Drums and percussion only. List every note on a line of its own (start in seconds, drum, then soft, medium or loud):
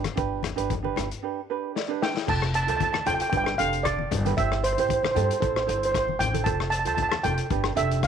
0.04 cross-stick medium
0.04 closed hi-hat medium
0.04 high conga medium
0.17 kick loud
0.17 closed hi-hat medium
0.43 cross-stick medium
0.43 closed hi-hat medium
0.43 high conga medium
0.43 low conga medium
0.58 closed hi-hat medium
0.70 kick medium
0.70 closed hi-hat medium
0.70 low conga medium
0.84 high conga medium
0.96 cross-stick medium
0.96 closed hi-hat medium
0.96 low conga medium
1.11 closed hi-hat medium
1.76 snare soft
2.02 snare medium
2.17 snare medium
2.27 kick loud
2.27 crash loud
2.27 low conga medium
2.42 cross-stick medium
2.54 closed hi-hat medium
2.68 closed hi-hat medium
2.80 kick medium
2.80 closed hi-hat medium
2.80 high conga medium
2.94 cross-stick medium
2.94 high conga medium
3.06 closed hi-hat medium
3.06 low conga medium
3.20 closed hi-hat medium
3.32 kick loud
3.32 closed hi-hat medium
3.46 cross-stick medium
3.59 closed hi-hat medium
3.73 closed hi-hat medium
3.85 kick medium
3.85 cross-stick medium
3.85 closed hi-hat medium
3.99 high conga medium
4.11 closed hi-hat medium
4.11 low conga medium
4.25 closed hi-hat medium
4.25 high conga medium
4.37 kick loud
4.37 closed hi-hat medium
4.37 low conga medium
4.52 cross-stick medium
4.64 closed hi-hat medium
4.78 closed hi-hat medium
4.89 kick medium
4.89 closed hi-hat medium
4.89 high conga medium
5.03 cross-stick medium
5.03 high conga medium
5.16 closed hi-hat medium
5.16 low conga medium
5.31 closed hi-hat medium
5.42 kick loud
5.42 closed hi-hat medium
5.56 cross-stick medium
5.69 closed hi-hat medium
5.83 closed hi-hat medium
5.94 kick medium
5.94 cross-stick medium
5.94 closed hi-hat medium
6.08 high conga medium
6.20 closed hi-hat medium
6.20 low conga medium
6.34 closed hi-hat medium
6.34 high conga medium
6.46 kick loud
6.46 closed hi-hat medium
6.46 low conga medium
6.60 cross-stick medium
6.72 closed hi-hat medium
6.85 closed hi-hat medium
6.97 kick medium
6.97 closed hi-hat medium
6.97 high conga medium
7.12 cross-stick loud
7.12 high conga medium
7.24 closed hi-hat medium
7.24 low conga medium
7.38 closed hi-hat medium
7.50 kick loud
7.50 closed hi-hat medium
7.64 cross-stick medium
7.77 closed hi-hat medium
7.91 closed hi-hat medium
8.03 kick medium
8.03 cross-stick medium
8.03 closed hi-hat medium